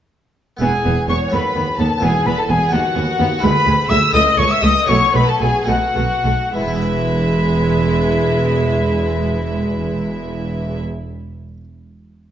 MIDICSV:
0, 0, Header, 1, 8, 480
1, 0, Start_track
1, 0, Key_signature, 4, "major"
1, 0, Tempo, 470219
1, 628, Time_signature, 6, 3, 24, 8
1, 3982, Tempo, 503356
1, 5422, Tempo, 547945
1, 5902, Tempo, 583658
1, 11129, End_track
2, 0, Start_track
2, 0, Title_t, "Flute"
2, 0, Program_c, 0, 73
2, 632, Note_on_c, 0, 80, 81
2, 1080, Note_off_c, 0, 80, 0
2, 1110, Note_on_c, 0, 85, 84
2, 1172, Note_off_c, 0, 85, 0
2, 1348, Note_on_c, 0, 83, 82
2, 1827, Note_on_c, 0, 81, 80
2, 1842, Note_off_c, 0, 83, 0
2, 2070, Note_on_c, 0, 80, 91
2, 2085, Note_off_c, 0, 81, 0
2, 2308, Note_on_c, 0, 83, 88
2, 2323, Note_off_c, 0, 80, 0
2, 2417, Note_off_c, 0, 83, 0
2, 2423, Note_on_c, 0, 81, 82
2, 2537, Note_off_c, 0, 81, 0
2, 2543, Note_on_c, 0, 80, 92
2, 2775, Note_on_c, 0, 78, 94
2, 2791, Note_off_c, 0, 80, 0
2, 3486, Note_off_c, 0, 78, 0
2, 3492, Note_on_c, 0, 83, 104
2, 3973, Note_on_c, 0, 88, 103
2, 3988, Note_off_c, 0, 83, 0
2, 4199, Note_off_c, 0, 88, 0
2, 4205, Note_on_c, 0, 87, 106
2, 4444, Note_on_c, 0, 85, 94
2, 4458, Note_off_c, 0, 87, 0
2, 4563, Note_on_c, 0, 88, 96
2, 4577, Note_off_c, 0, 85, 0
2, 4682, Note_off_c, 0, 88, 0
2, 4687, Note_on_c, 0, 87, 98
2, 4923, Note_on_c, 0, 85, 112
2, 4937, Note_off_c, 0, 87, 0
2, 5179, Note_on_c, 0, 83, 95
2, 5193, Note_off_c, 0, 85, 0
2, 5295, Note_off_c, 0, 83, 0
2, 5301, Note_on_c, 0, 81, 94
2, 5422, Note_on_c, 0, 80, 92
2, 5435, Note_off_c, 0, 81, 0
2, 5658, Note_on_c, 0, 78, 96
2, 5671, Note_off_c, 0, 80, 0
2, 6376, Note_off_c, 0, 78, 0
2, 6381, Note_on_c, 0, 71, 77
2, 9885, Note_off_c, 0, 71, 0
2, 11129, End_track
3, 0, Start_track
3, 0, Title_t, "Violin section"
3, 0, Program_c, 1, 48
3, 620, Note_on_c, 1, 80, 91
3, 1073, Note_off_c, 1, 80, 0
3, 1108, Note_on_c, 1, 85, 107
3, 1190, Note_off_c, 1, 85, 0
3, 1352, Note_on_c, 1, 83, 87
3, 1820, Note_off_c, 1, 83, 0
3, 1825, Note_on_c, 1, 81, 97
3, 2063, Note_on_c, 1, 80, 94
3, 2066, Note_off_c, 1, 81, 0
3, 2305, Note_off_c, 1, 80, 0
3, 2312, Note_on_c, 1, 83, 100
3, 2427, Note_off_c, 1, 83, 0
3, 2428, Note_on_c, 1, 81, 88
3, 2541, Note_on_c, 1, 80, 105
3, 2548, Note_off_c, 1, 81, 0
3, 2784, Note_off_c, 1, 80, 0
3, 2785, Note_on_c, 1, 78, 106
3, 3495, Note_on_c, 1, 83, 117
3, 3503, Note_off_c, 1, 78, 0
3, 3971, Note_on_c, 1, 88, 127
3, 3979, Note_off_c, 1, 83, 0
3, 4202, Note_off_c, 1, 88, 0
3, 4205, Note_on_c, 1, 87, 111
3, 4281, Note_off_c, 1, 87, 0
3, 4438, Note_on_c, 1, 85, 111
3, 4549, Note_on_c, 1, 88, 121
3, 4557, Note_off_c, 1, 85, 0
3, 4675, Note_off_c, 1, 88, 0
3, 4678, Note_on_c, 1, 87, 121
3, 4913, Note_on_c, 1, 85, 105
3, 4922, Note_off_c, 1, 87, 0
3, 5160, Note_off_c, 1, 85, 0
3, 5164, Note_on_c, 1, 83, 101
3, 5287, Note_on_c, 1, 81, 96
3, 5290, Note_off_c, 1, 83, 0
3, 5417, Note_on_c, 1, 80, 104
3, 5418, Note_off_c, 1, 81, 0
3, 5652, Note_off_c, 1, 80, 0
3, 5656, Note_on_c, 1, 78, 91
3, 6377, Note_on_c, 1, 76, 97
3, 6380, Note_off_c, 1, 78, 0
3, 9883, Note_off_c, 1, 76, 0
3, 11129, End_track
4, 0, Start_track
4, 0, Title_t, "Violin section"
4, 0, Program_c, 2, 48
4, 631, Note_on_c, 2, 68, 81
4, 1079, Note_off_c, 2, 68, 0
4, 1115, Note_on_c, 2, 73, 88
4, 1349, Note_off_c, 2, 73, 0
4, 1357, Note_on_c, 2, 71, 73
4, 1832, Note_off_c, 2, 71, 0
4, 1833, Note_on_c, 2, 69, 79
4, 1915, Note_off_c, 2, 69, 0
4, 2070, Note_on_c, 2, 68, 83
4, 2303, Note_off_c, 2, 68, 0
4, 2307, Note_on_c, 2, 71, 85
4, 2426, Note_on_c, 2, 69, 84
4, 2427, Note_off_c, 2, 71, 0
4, 2546, Note_off_c, 2, 69, 0
4, 2549, Note_on_c, 2, 68, 86
4, 2786, Note_on_c, 2, 66, 82
4, 2787, Note_off_c, 2, 68, 0
4, 3489, Note_off_c, 2, 66, 0
4, 3498, Note_on_c, 2, 71, 96
4, 3974, Note_on_c, 2, 76, 108
4, 3980, Note_off_c, 2, 71, 0
4, 4051, Note_off_c, 2, 76, 0
4, 4210, Note_on_c, 2, 75, 107
4, 4439, Note_on_c, 2, 73, 100
4, 4440, Note_off_c, 2, 75, 0
4, 4560, Note_off_c, 2, 73, 0
4, 4560, Note_on_c, 2, 76, 93
4, 4677, Note_on_c, 2, 75, 105
4, 4679, Note_off_c, 2, 76, 0
4, 4915, Note_on_c, 2, 73, 97
4, 4921, Note_off_c, 2, 75, 0
4, 5160, Note_on_c, 2, 71, 95
4, 5161, Note_off_c, 2, 73, 0
4, 5287, Note_on_c, 2, 69, 88
4, 5291, Note_off_c, 2, 71, 0
4, 5413, Note_on_c, 2, 68, 92
4, 5418, Note_off_c, 2, 69, 0
4, 5651, Note_on_c, 2, 66, 80
4, 5655, Note_off_c, 2, 68, 0
4, 6364, Note_off_c, 2, 66, 0
4, 6378, Note_on_c, 2, 64, 79
4, 9884, Note_off_c, 2, 64, 0
4, 11129, End_track
5, 0, Start_track
5, 0, Title_t, "Harpsichord"
5, 0, Program_c, 3, 6
5, 579, Note_on_c, 3, 59, 48
5, 596, Note_on_c, 3, 64, 55
5, 609, Note_on_c, 3, 71, 53
5, 626, Note_on_c, 3, 40, 63
5, 844, Note_off_c, 3, 40, 0
5, 870, Note_on_c, 3, 40, 59
5, 1087, Note_off_c, 3, 40, 0
5, 1112, Note_on_c, 3, 40, 61
5, 1295, Note_off_c, 3, 59, 0
5, 1307, Note_on_c, 3, 59, 55
5, 1314, Note_off_c, 3, 64, 0
5, 1321, Note_off_c, 3, 71, 0
5, 1323, Note_on_c, 3, 66, 50
5, 1329, Note_off_c, 3, 40, 0
5, 1339, Note_on_c, 3, 69, 54
5, 1352, Note_on_c, 3, 39, 63
5, 1568, Note_off_c, 3, 39, 0
5, 1593, Note_on_c, 3, 39, 66
5, 1807, Note_off_c, 3, 39, 0
5, 1833, Note_on_c, 3, 39, 66
5, 2008, Note_off_c, 3, 59, 0
5, 2020, Note_on_c, 3, 59, 56
5, 2032, Note_off_c, 3, 66, 0
5, 2037, Note_on_c, 3, 64, 59
5, 2040, Note_off_c, 3, 69, 0
5, 2046, Note_off_c, 3, 39, 0
5, 2053, Note_on_c, 3, 68, 57
5, 2067, Note_on_c, 3, 40, 61
5, 2283, Note_off_c, 3, 40, 0
5, 2309, Note_on_c, 3, 40, 71
5, 2524, Note_off_c, 3, 40, 0
5, 2542, Note_on_c, 3, 40, 58
5, 2722, Note_off_c, 3, 59, 0
5, 2735, Note_on_c, 3, 59, 61
5, 2748, Note_off_c, 3, 64, 0
5, 2749, Note_on_c, 3, 66, 55
5, 2757, Note_off_c, 3, 68, 0
5, 2760, Note_off_c, 3, 40, 0
5, 2766, Note_on_c, 3, 71, 57
5, 2781, Note_on_c, 3, 39, 66
5, 2999, Note_off_c, 3, 39, 0
5, 3014, Note_on_c, 3, 39, 68
5, 3235, Note_off_c, 3, 39, 0
5, 3256, Note_on_c, 3, 39, 76
5, 3451, Note_on_c, 3, 56, 63
5, 3455, Note_off_c, 3, 59, 0
5, 3463, Note_off_c, 3, 66, 0
5, 3467, Note_on_c, 3, 64, 59
5, 3472, Note_off_c, 3, 71, 0
5, 3474, Note_off_c, 3, 39, 0
5, 3484, Note_on_c, 3, 71, 60
5, 3496, Note_on_c, 3, 38, 71
5, 3714, Note_off_c, 3, 38, 0
5, 3735, Note_on_c, 3, 38, 70
5, 3955, Note_off_c, 3, 38, 0
5, 3980, Note_on_c, 3, 38, 68
5, 4167, Note_off_c, 3, 56, 0
5, 4168, Note_on_c, 3, 57, 59
5, 4170, Note_off_c, 3, 64, 0
5, 4182, Note_on_c, 3, 64, 66
5, 4183, Note_off_c, 3, 71, 0
5, 4188, Note_off_c, 3, 38, 0
5, 4197, Note_on_c, 3, 69, 63
5, 4209, Note_on_c, 3, 37, 67
5, 4421, Note_off_c, 3, 37, 0
5, 4441, Note_on_c, 3, 37, 68
5, 4657, Note_off_c, 3, 37, 0
5, 4684, Note_on_c, 3, 37, 78
5, 4868, Note_off_c, 3, 57, 0
5, 4879, Note_on_c, 3, 57, 60
5, 4884, Note_off_c, 3, 64, 0
5, 4895, Note_off_c, 3, 69, 0
5, 4896, Note_on_c, 3, 64, 59
5, 4900, Note_off_c, 3, 37, 0
5, 4907, Note_on_c, 3, 66, 61
5, 4923, Note_on_c, 3, 47, 70
5, 5146, Note_off_c, 3, 47, 0
5, 5173, Note_on_c, 3, 47, 70
5, 5399, Note_off_c, 3, 47, 0
5, 5425, Note_on_c, 3, 47, 63
5, 5612, Note_off_c, 3, 57, 0
5, 5622, Note_on_c, 3, 57, 59
5, 5625, Note_off_c, 3, 64, 0
5, 5631, Note_off_c, 3, 66, 0
5, 5635, Note_on_c, 3, 63, 62
5, 5637, Note_off_c, 3, 47, 0
5, 5649, Note_on_c, 3, 66, 62
5, 5661, Note_on_c, 3, 47, 66
5, 5880, Note_off_c, 3, 47, 0
5, 5900, Note_on_c, 3, 47, 66
5, 6115, Note_off_c, 3, 47, 0
5, 6136, Note_on_c, 3, 47, 65
5, 6343, Note_off_c, 3, 57, 0
5, 6349, Note_off_c, 3, 63, 0
5, 6355, Note_off_c, 3, 47, 0
5, 6355, Note_off_c, 3, 66, 0
5, 6379, Note_on_c, 3, 52, 63
5, 6436, Note_on_c, 3, 59, 66
5, 6494, Note_on_c, 3, 64, 64
5, 6551, Note_on_c, 3, 68, 59
5, 6607, Note_on_c, 3, 76, 61
5, 10441, Note_off_c, 3, 52, 0
5, 10488, Note_off_c, 3, 59, 0
5, 10517, Note_off_c, 3, 64, 0
5, 10546, Note_off_c, 3, 68, 0
5, 10574, Note_off_c, 3, 76, 0
5, 11129, End_track
6, 0, Start_track
6, 0, Title_t, "Viola section"
6, 0, Program_c, 4, 48
6, 630, Note_on_c, 4, 59, 77
6, 711, Note_off_c, 4, 59, 0
6, 865, Note_on_c, 4, 59, 61
6, 946, Note_off_c, 4, 59, 0
6, 1115, Note_on_c, 4, 59, 67
6, 1197, Note_off_c, 4, 59, 0
6, 1355, Note_on_c, 4, 59, 68
6, 1437, Note_off_c, 4, 59, 0
6, 1596, Note_on_c, 4, 59, 61
6, 1678, Note_off_c, 4, 59, 0
6, 1827, Note_on_c, 4, 59, 67
6, 1909, Note_off_c, 4, 59, 0
6, 2066, Note_on_c, 4, 59, 78
6, 2148, Note_off_c, 4, 59, 0
6, 2310, Note_on_c, 4, 59, 67
6, 2392, Note_off_c, 4, 59, 0
6, 2548, Note_on_c, 4, 59, 66
6, 2630, Note_off_c, 4, 59, 0
6, 2786, Note_on_c, 4, 59, 79
6, 2867, Note_off_c, 4, 59, 0
6, 3024, Note_on_c, 4, 59, 68
6, 3105, Note_off_c, 4, 59, 0
6, 3254, Note_on_c, 4, 59, 73
6, 3336, Note_off_c, 4, 59, 0
6, 3491, Note_on_c, 4, 56, 90
6, 3573, Note_off_c, 4, 56, 0
6, 3737, Note_on_c, 4, 56, 71
6, 3818, Note_off_c, 4, 56, 0
6, 3980, Note_on_c, 4, 56, 75
6, 4057, Note_off_c, 4, 56, 0
6, 4211, Note_on_c, 4, 57, 84
6, 4287, Note_off_c, 4, 57, 0
6, 4444, Note_on_c, 4, 57, 70
6, 4520, Note_off_c, 4, 57, 0
6, 4680, Note_on_c, 4, 57, 79
6, 4756, Note_off_c, 4, 57, 0
6, 4925, Note_on_c, 4, 57, 86
6, 5002, Note_off_c, 4, 57, 0
6, 5168, Note_on_c, 4, 57, 74
6, 5244, Note_off_c, 4, 57, 0
6, 5417, Note_on_c, 4, 57, 66
6, 5487, Note_off_c, 4, 57, 0
6, 5650, Note_on_c, 4, 57, 75
6, 5720, Note_off_c, 4, 57, 0
6, 5896, Note_on_c, 4, 57, 63
6, 5962, Note_off_c, 4, 57, 0
6, 6133, Note_on_c, 4, 57, 68
6, 6199, Note_off_c, 4, 57, 0
6, 6376, Note_on_c, 4, 56, 85
6, 9882, Note_off_c, 4, 56, 0
6, 11129, End_track
7, 0, Start_track
7, 0, Title_t, "Cello section"
7, 0, Program_c, 5, 48
7, 629, Note_on_c, 5, 40, 80
7, 711, Note_off_c, 5, 40, 0
7, 871, Note_on_c, 5, 40, 66
7, 953, Note_off_c, 5, 40, 0
7, 1110, Note_on_c, 5, 40, 72
7, 1192, Note_off_c, 5, 40, 0
7, 1353, Note_on_c, 5, 39, 84
7, 1435, Note_off_c, 5, 39, 0
7, 1594, Note_on_c, 5, 39, 71
7, 1675, Note_off_c, 5, 39, 0
7, 1830, Note_on_c, 5, 39, 74
7, 1912, Note_off_c, 5, 39, 0
7, 2065, Note_on_c, 5, 40, 84
7, 2147, Note_off_c, 5, 40, 0
7, 2305, Note_on_c, 5, 40, 80
7, 2386, Note_off_c, 5, 40, 0
7, 2544, Note_on_c, 5, 40, 69
7, 2625, Note_off_c, 5, 40, 0
7, 2779, Note_on_c, 5, 39, 89
7, 2860, Note_off_c, 5, 39, 0
7, 3017, Note_on_c, 5, 39, 73
7, 3099, Note_off_c, 5, 39, 0
7, 3255, Note_on_c, 5, 39, 86
7, 3337, Note_off_c, 5, 39, 0
7, 3496, Note_on_c, 5, 38, 90
7, 3577, Note_off_c, 5, 38, 0
7, 3734, Note_on_c, 5, 38, 88
7, 3815, Note_off_c, 5, 38, 0
7, 3975, Note_on_c, 5, 38, 80
7, 4052, Note_off_c, 5, 38, 0
7, 4204, Note_on_c, 5, 37, 88
7, 4280, Note_off_c, 5, 37, 0
7, 4441, Note_on_c, 5, 37, 78
7, 4517, Note_off_c, 5, 37, 0
7, 4674, Note_on_c, 5, 37, 85
7, 4751, Note_off_c, 5, 37, 0
7, 4919, Note_on_c, 5, 47, 91
7, 4996, Note_off_c, 5, 47, 0
7, 5165, Note_on_c, 5, 47, 80
7, 5242, Note_off_c, 5, 47, 0
7, 5422, Note_on_c, 5, 47, 78
7, 5492, Note_off_c, 5, 47, 0
7, 5655, Note_on_c, 5, 47, 88
7, 5725, Note_off_c, 5, 47, 0
7, 5896, Note_on_c, 5, 47, 73
7, 5962, Note_off_c, 5, 47, 0
7, 6134, Note_on_c, 5, 47, 78
7, 6200, Note_off_c, 5, 47, 0
7, 6377, Note_on_c, 5, 40, 81
7, 9883, Note_off_c, 5, 40, 0
7, 11129, End_track
8, 0, Start_track
8, 0, Title_t, "Double bass section"
8, 0, Program_c, 6, 48
8, 623, Note_on_c, 6, 28, 83
8, 704, Note_off_c, 6, 28, 0
8, 874, Note_on_c, 6, 28, 66
8, 956, Note_off_c, 6, 28, 0
8, 1112, Note_on_c, 6, 28, 72
8, 1194, Note_off_c, 6, 28, 0
8, 1358, Note_on_c, 6, 39, 80
8, 1440, Note_off_c, 6, 39, 0
8, 1595, Note_on_c, 6, 39, 75
8, 1677, Note_off_c, 6, 39, 0
8, 1832, Note_on_c, 6, 39, 75
8, 1913, Note_off_c, 6, 39, 0
8, 2071, Note_on_c, 6, 28, 88
8, 2153, Note_off_c, 6, 28, 0
8, 2310, Note_on_c, 6, 28, 76
8, 2392, Note_off_c, 6, 28, 0
8, 2547, Note_on_c, 6, 28, 79
8, 2629, Note_off_c, 6, 28, 0
8, 2786, Note_on_c, 6, 39, 83
8, 2867, Note_off_c, 6, 39, 0
8, 3021, Note_on_c, 6, 39, 80
8, 3102, Note_off_c, 6, 39, 0
8, 3264, Note_on_c, 6, 39, 86
8, 3345, Note_off_c, 6, 39, 0
8, 3504, Note_on_c, 6, 38, 100
8, 3586, Note_off_c, 6, 38, 0
8, 3740, Note_on_c, 6, 38, 80
8, 3821, Note_off_c, 6, 38, 0
8, 3983, Note_on_c, 6, 38, 86
8, 4059, Note_off_c, 6, 38, 0
8, 4210, Note_on_c, 6, 37, 84
8, 4286, Note_off_c, 6, 37, 0
8, 4438, Note_on_c, 6, 37, 95
8, 4514, Note_off_c, 6, 37, 0
8, 4676, Note_on_c, 6, 37, 87
8, 4752, Note_off_c, 6, 37, 0
8, 4914, Note_on_c, 6, 35, 93
8, 4990, Note_off_c, 6, 35, 0
8, 5162, Note_on_c, 6, 35, 75
8, 5239, Note_off_c, 6, 35, 0
8, 5419, Note_on_c, 6, 35, 82
8, 5489, Note_off_c, 6, 35, 0
8, 5650, Note_on_c, 6, 35, 83
8, 5721, Note_off_c, 6, 35, 0
8, 5902, Note_on_c, 6, 35, 83
8, 5968, Note_off_c, 6, 35, 0
8, 6137, Note_on_c, 6, 35, 75
8, 6203, Note_off_c, 6, 35, 0
8, 6380, Note_on_c, 6, 28, 88
8, 9884, Note_off_c, 6, 28, 0
8, 11129, End_track
0, 0, End_of_file